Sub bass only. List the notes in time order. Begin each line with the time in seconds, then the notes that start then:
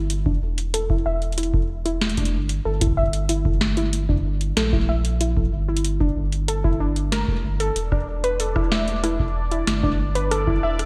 Already playing: G1
0.42 E1
1.06 E1
2.34 G1
2.65 G1
4.57 A#1
5.53 G1
6.16 G1
7.44 G1
7.76 E1
9.67 G1
10.63 E1